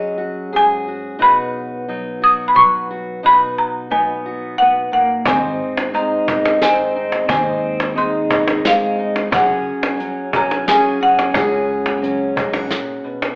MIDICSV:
0, 0, Header, 1, 7, 480
1, 0, Start_track
1, 0, Key_signature, 6, "major"
1, 0, Tempo, 677201
1, 851, Time_signature, 3, 2, 24, 8
1, 9465, End_track
2, 0, Start_track
2, 0, Title_t, "Marimba"
2, 0, Program_c, 0, 12
2, 0, Note_on_c, 0, 75, 91
2, 392, Note_off_c, 0, 75, 0
2, 399, Note_on_c, 0, 80, 108
2, 837, Note_off_c, 0, 80, 0
2, 866, Note_on_c, 0, 83, 110
2, 1585, Note_on_c, 0, 87, 112
2, 1600, Note_off_c, 0, 83, 0
2, 1758, Note_on_c, 0, 83, 82
2, 1774, Note_off_c, 0, 87, 0
2, 1809, Note_off_c, 0, 83, 0
2, 1815, Note_on_c, 0, 85, 110
2, 2265, Note_off_c, 0, 85, 0
2, 2310, Note_on_c, 0, 83, 112
2, 2524, Note_off_c, 0, 83, 0
2, 2541, Note_on_c, 0, 82, 96
2, 2775, Note_on_c, 0, 80, 93
2, 2783, Note_off_c, 0, 82, 0
2, 3248, Note_on_c, 0, 78, 99
2, 3268, Note_off_c, 0, 80, 0
2, 3488, Note_off_c, 0, 78, 0
2, 3496, Note_on_c, 0, 78, 89
2, 3738, Note_on_c, 0, 80, 88
2, 3741, Note_off_c, 0, 78, 0
2, 4216, Note_on_c, 0, 82, 90
2, 4229, Note_off_c, 0, 80, 0
2, 4665, Note_off_c, 0, 82, 0
2, 4697, Note_on_c, 0, 80, 88
2, 5163, Note_off_c, 0, 80, 0
2, 5172, Note_on_c, 0, 80, 90
2, 5655, Note_on_c, 0, 84, 94
2, 5666, Note_off_c, 0, 80, 0
2, 6147, Note_on_c, 0, 77, 92
2, 6148, Note_off_c, 0, 84, 0
2, 6621, Note_on_c, 0, 78, 94
2, 6634, Note_off_c, 0, 77, 0
2, 7345, Note_on_c, 0, 82, 95
2, 7359, Note_off_c, 0, 78, 0
2, 7575, Note_on_c, 0, 80, 101
2, 7586, Note_off_c, 0, 82, 0
2, 7816, Note_on_c, 0, 78, 91
2, 7821, Note_off_c, 0, 80, 0
2, 8988, Note_off_c, 0, 78, 0
2, 9465, End_track
3, 0, Start_track
3, 0, Title_t, "Steel-string acoustic guitar"
3, 0, Program_c, 1, 25
3, 0, Note_on_c, 1, 54, 74
3, 0, Note_on_c, 1, 61, 60
3, 0, Note_on_c, 1, 66, 64
3, 0, Note_on_c, 1, 68, 71
3, 123, Note_off_c, 1, 66, 0
3, 126, Note_on_c, 1, 66, 61
3, 365, Note_off_c, 1, 68, 0
3, 372, Note_on_c, 1, 44, 65
3, 375, Note_on_c, 1, 68, 78
3, 621, Note_off_c, 1, 66, 0
3, 624, Note_on_c, 1, 66, 61
3, 823, Note_off_c, 1, 44, 0
3, 825, Note_off_c, 1, 61, 0
3, 842, Note_on_c, 1, 47, 88
3, 845, Note_on_c, 1, 63, 67
3, 850, Note_off_c, 1, 66, 0
3, 852, Note_off_c, 1, 68, 0
3, 853, Note_on_c, 1, 66, 66
3, 854, Note_on_c, 1, 71, 73
3, 1333, Note_off_c, 1, 54, 0
3, 1336, Note_off_c, 1, 63, 0
3, 1336, Note_on_c, 1, 54, 68
3, 1339, Note_on_c, 1, 63, 65
3, 1570, Note_off_c, 1, 66, 0
3, 1573, Note_on_c, 1, 66, 66
3, 1799, Note_off_c, 1, 54, 0
3, 1805, Note_off_c, 1, 71, 0
3, 1807, Note_on_c, 1, 54, 73
3, 1814, Note_on_c, 1, 71, 75
3, 2052, Note_off_c, 1, 66, 0
3, 2060, Note_on_c, 1, 66, 66
3, 2258, Note_off_c, 1, 47, 0
3, 2260, Note_off_c, 1, 54, 0
3, 2264, Note_off_c, 1, 71, 0
3, 2267, Note_off_c, 1, 66, 0
3, 2290, Note_on_c, 1, 47, 84
3, 2295, Note_off_c, 1, 63, 0
3, 2298, Note_on_c, 1, 63, 70
3, 2306, Note_on_c, 1, 66, 68
3, 2310, Note_on_c, 1, 71, 79
3, 2767, Note_on_c, 1, 54, 68
3, 2769, Note_off_c, 1, 63, 0
3, 2772, Note_on_c, 1, 63, 68
3, 3009, Note_off_c, 1, 66, 0
3, 3018, Note_on_c, 1, 66, 64
3, 3248, Note_off_c, 1, 47, 0
3, 3257, Note_on_c, 1, 47, 66
3, 3483, Note_off_c, 1, 47, 0
3, 3485, Note_on_c, 1, 46, 69
3, 3706, Note_off_c, 1, 66, 0
3, 3712, Note_off_c, 1, 71, 0
3, 3728, Note_off_c, 1, 46, 0
3, 3730, Note_off_c, 1, 54, 0
3, 3734, Note_off_c, 1, 63, 0
3, 3734, Note_on_c, 1, 44, 78
3, 3737, Note_on_c, 1, 60, 69
3, 3745, Note_on_c, 1, 63, 68
3, 3749, Note_on_c, 1, 72, 70
3, 4204, Note_off_c, 1, 60, 0
3, 4206, Note_on_c, 1, 56, 67
3, 4207, Note_on_c, 1, 60, 64
3, 4446, Note_off_c, 1, 63, 0
3, 4449, Note_on_c, 1, 63, 65
3, 4688, Note_off_c, 1, 72, 0
3, 4694, Note_on_c, 1, 51, 74
3, 4698, Note_on_c, 1, 72, 69
3, 4924, Note_off_c, 1, 63, 0
3, 4932, Note_on_c, 1, 63, 60
3, 5140, Note_off_c, 1, 60, 0
3, 5145, Note_off_c, 1, 44, 0
3, 5145, Note_off_c, 1, 51, 0
3, 5145, Note_off_c, 1, 72, 0
3, 5165, Note_on_c, 1, 44, 76
3, 5167, Note_off_c, 1, 63, 0
3, 5171, Note_on_c, 1, 60, 69
3, 5178, Note_on_c, 1, 63, 65
3, 5180, Note_on_c, 1, 72, 76
3, 5635, Note_off_c, 1, 56, 0
3, 5638, Note_on_c, 1, 56, 69
3, 5640, Note_off_c, 1, 60, 0
3, 5648, Note_on_c, 1, 60, 63
3, 5882, Note_off_c, 1, 63, 0
3, 5891, Note_on_c, 1, 63, 66
3, 6126, Note_off_c, 1, 72, 0
3, 6130, Note_on_c, 1, 51, 72
3, 6134, Note_on_c, 1, 72, 74
3, 6363, Note_off_c, 1, 63, 0
3, 6371, Note_on_c, 1, 63, 64
3, 6580, Note_off_c, 1, 44, 0
3, 6582, Note_off_c, 1, 51, 0
3, 6582, Note_off_c, 1, 60, 0
3, 6584, Note_off_c, 1, 72, 0
3, 6598, Note_on_c, 1, 42, 83
3, 6600, Note_off_c, 1, 63, 0
3, 6602, Note_on_c, 1, 61, 72
3, 6603, Note_on_c, 1, 66, 72
3, 6611, Note_on_c, 1, 68, 77
3, 6619, Note_off_c, 1, 56, 0
3, 7081, Note_on_c, 1, 54, 74
3, 7087, Note_off_c, 1, 61, 0
3, 7090, Note_on_c, 1, 61, 67
3, 7328, Note_off_c, 1, 66, 0
3, 7331, Note_on_c, 1, 66, 68
3, 7561, Note_on_c, 1, 49, 72
3, 7563, Note_off_c, 1, 68, 0
3, 7566, Note_on_c, 1, 68, 80
3, 7799, Note_off_c, 1, 66, 0
3, 7802, Note_on_c, 1, 66, 61
3, 8035, Note_off_c, 1, 42, 0
3, 8044, Note_on_c, 1, 42, 84
3, 8047, Note_off_c, 1, 61, 0
3, 8048, Note_off_c, 1, 49, 0
3, 8050, Note_on_c, 1, 61, 75
3, 8051, Note_off_c, 1, 66, 0
3, 8054, Note_on_c, 1, 66, 73
3, 8057, Note_off_c, 1, 68, 0
3, 8060, Note_on_c, 1, 68, 79
3, 8512, Note_off_c, 1, 54, 0
3, 8518, Note_off_c, 1, 61, 0
3, 8520, Note_on_c, 1, 54, 71
3, 8527, Note_on_c, 1, 61, 65
3, 8757, Note_off_c, 1, 66, 0
3, 8759, Note_on_c, 1, 63, 61
3, 8883, Note_off_c, 1, 63, 0
3, 8883, Note_on_c, 1, 66, 53
3, 8994, Note_off_c, 1, 42, 0
3, 8997, Note_on_c, 1, 46, 65
3, 9240, Note_off_c, 1, 46, 0
3, 9243, Note_on_c, 1, 47, 61
3, 9464, Note_off_c, 1, 61, 0
3, 9465, Note_off_c, 1, 47, 0
3, 9465, Note_off_c, 1, 54, 0
3, 9465, Note_off_c, 1, 66, 0
3, 9465, Note_off_c, 1, 68, 0
3, 9465, End_track
4, 0, Start_track
4, 0, Title_t, "Pedal steel guitar"
4, 0, Program_c, 2, 26
4, 2779, Note_on_c, 2, 59, 84
4, 3227, Note_off_c, 2, 59, 0
4, 3276, Note_on_c, 2, 59, 75
4, 3488, Note_off_c, 2, 59, 0
4, 3501, Note_on_c, 2, 58, 75
4, 3720, Note_off_c, 2, 58, 0
4, 3735, Note_on_c, 2, 60, 81
4, 4185, Note_off_c, 2, 60, 0
4, 4213, Note_on_c, 2, 63, 84
4, 4664, Note_off_c, 2, 63, 0
4, 4696, Note_on_c, 2, 60, 80
4, 5146, Note_off_c, 2, 60, 0
4, 5163, Note_on_c, 2, 60, 80
4, 5619, Note_off_c, 2, 60, 0
4, 5643, Note_on_c, 2, 63, 84
4, 6099, Note_off_c, 2, 63, 0
4, 6132, Note_on_c, 2, 56, 80
4, 6584, Note_off_c, 2, 56, 0
4, 6624, Note_on_c, 2, 61, 79
4, 7310, Note_off_c, 2, 61, 0
4, 7323, Note_on_c, 2, 61, 82
4, 7551, Note_off_c, 2, 61, 0
4, 7571, Note_on_c, 2, 61, 83
4, 7795, Note_off_c, 2, 61, 0
4, 7815, Note_on_c, 2, 61, 68
4, 8988, Note_off_c, 2, 61, 0
4, 9465, End_track
5, 0, Start_track
5, 0, Title_t, "Fingered electric bass"
5, 0, Program_c, 3, 33
5, 3736, Note_on_c, 3, 32, 100
5, 3962, Note_off_c, 3, 32, 0
5, 5171, Note_on_c, 3, 39, 99
5, 6103, Note_off_c, 3, 39, 0
5, 6612, Note_on_c, 3, 30, 96
5, 6840, Note_off_c, 3, 30, 0
5, 8049, Note_on_c, 3, 37, 97
5, 8985, Note_off_c, 3, 37, 0
5, 9465, End_track
6, 0, Start_track
6, 0, Title_t, "Cajon"
6, 3724, Note_on_c, 9, 36, 100
6, 3795, Note_off_c, 9, 36, 0
6, 4093, Note_on_c, 9, 38, 78
6, 4163, Note_off_c, 9, 38, 0
6, 4451, Note_on_c, 9, 36, 95
6, 4522, Note_off_c, 9, 36, 0
6, 4575, Note_on_c, 9, 38, 82
6, 4646, Note_off_c, 9, 38, 0
6, 4931, Note_on_c, 9, 38, 29
6, 5002, Note_off_c, 9, 38, 0
6, 5048, Note_on_c, 9, 38, 74
6, 5119, Note_off_c, 9, 38, 0
6, 5166, Note_on_c, 9, 36, 98
6, 5237, Note_off_c, 9, 36, 0
6, 5528, Note_on_c, 9, 38, 80
6, 5599, Note_off_c, 9, 38, 0
6, 5886, Note_on_c, 9, 36, 93
6, 5957, Note_off_c, 9, 36, 0
6, 6008, Note_on_c, 9, 38, 82
6, 6078, Note_off_c, 9, 38, 0
6, 6371, Note_on_c, 9, 38, 32
6, 6441, Note_off_c, 9, 38, 0
6, 6491, Note_on_c, 9, 38, 77
6, 6562, Note_off_c, 9, 38, 0
6, 6608, Note_on_c, 9, 36, 99
6, 6679, Note_off_c, 9, 36, 0
6, 6967, Note_on_c, 9, 38, 85
6, 7038, Note_off_c, 9, 38, 0
6, 7324, Note_on_c, 9, 36, 91
6, 7395, Note_off_c, 9, 36, 0
6, 7451, Note_on_c, 9, 38, 80
6, 7522, Note_off_c, 9, 38, 0
6, 7809, Note_on_c, 9, 38, 30
6, 7880, Note_off_c, 9, 38, 0
6, 7929, Note_on_c, 9, 38, 76
6, 8000, Note_off_c, 9, 38, 0
6, 8040, Note_on_c, 9, 36, 94
6, 8040, Note_on_c, 9, 38, 30
6, 8110, Note_off_c, 9, 36, 0
6, 8110, Note_off_c, 9, 38, 0
6, 8405, Note_on_c, 9, 38, 72
6, 8476, Note_off_c, 9, 38, 0
6, 8526, Note_on_c, 9, 38, 30
6, 8596, Note_off_c, 9, 38, 0
6, 8769, Note_on_c, 9, 36, 94
6, 8840, Note_off_c, 9, 36, 0
6, 8885, Note_on_c, 9, 38, 74
6, 8956, Note_off_c, 9, 38, 0
6, 9257, Note_on_c, 9, 38, 30
6, 9328, Note_off_c, 9, 38, 0
6, 9372, Note_on_c, 9, 38, 75
6, 9443, Note_off_c, 9, 38, 0
6, 9465, End_track
7, 0, Start_track
7, 0, Title_t, "Drums"
7, 3732, Note_on_c, 9, 36, 95
7, 3734, Note_on_c, 9, 42, 58
7, 3803, Note_off_c, 9, 36, 0
7, 3804, Note_off_c, 9, 42, 0
7, 4216, Note_on_c, 9, 42, 53
7, 4287, Note_off_c, 9, 42, 0
7, 4689, Note_on_c, 9, 38, 72
7, 4689, Note_on_c, 9, 42, 58
7, 4760, Note_off_c, 9, 38, 0
7, 4760, Note_off_c, 9, 42, 0
7, 5171, Note_on_c, 9, 36, 101
7, 5172, Note_on_c, 9, 42, 50
7, 5242, Note_off_c, 9, 36, 0
7, 5243, Note_off_c, 9, 42, 0
7, 5651, Note_on_c, 9, 42, 49
7, 5722, Note_off_c, 9, 42, 0
7, 6131, Note_on_c, 9, 38, 76
7, 6131, Note_on_c, 9, 42, 54
7, 6202, Note_off_c, 9, 38, 0
7, 6202, Note_off_c, 9, 42, 0
7, 6609, Note_on_c, 9, 42, 58
7, 6611, Note_on_c, 9, 36, 100
7, 6680, Note_off_c, 9, 42, 0
7, 6682, Note_off_c, 9, 36, 0
7, 7088, Note_on_c, 9, 42, 54
7, 7159, Note_off_c, 9, 42, 0
7, 7568, Note_on_c, 9, 38, 75
7, 7568, Note_on_c, 9, 42, 57
7, 7639, Note_off_c, 9, 38, 0
7, 7639, Note_off_c, 9, 42, 0
7, 8047, Note_on_c, 9, 36, 97
7, 8048, Note_on_c, 9, 42, 56
7, 8118, Note_off_c, 9, 36, 0
7, 8119, Note_off_c, 9, 42, 0
7, 8531, Note_on_c, 9, 42, 54
7, 8602, Note_off_c, 9, 42, 0
7, 9006, Note_on_c, 9, 38, 71
7, 9006, Note_on_c, 9, 42, 54
7, 9076, Note_off_c, 9, 38, 0
7, 9076, Note_off_c, 9, 42, 0
7, 9465, End_track
0, 0, End_of_file